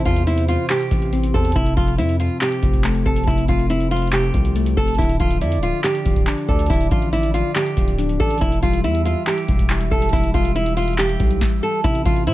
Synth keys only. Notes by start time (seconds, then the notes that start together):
Already playing: C3 E3 C4 C5
0.06 E3
0.27 C5
0.70 C3
0.91 E3
1.13 C4
1.34 C5
1.56 C3
1.77 F3
1.98 C4
2.41 C3
2.63 F3
2.84 A3
3.06 C4
3.27 C3
3.48 F3
3.70 C4
4.13 C3
4.34 F3
4.56 A3
4.77 C4
4.98 D3
5.20 F3
5.41 D5
5.84 D3
6.06 F3
6.27 D4
6.48 D5
6.70 D3
6.91 F3
7.13 D5
7.56 D3
7.77 F3
7.99 D4
8.20 D5
8.41 E3
8.63 G3
8.84 E5
9.27 E3
9.48 G3
9.70 E4
9.91 E5
10.13 E3
10.34 G3
10.55 E5
10.98 E3
11.20 G3
11.84 C3
12.06 E3
12.27 C5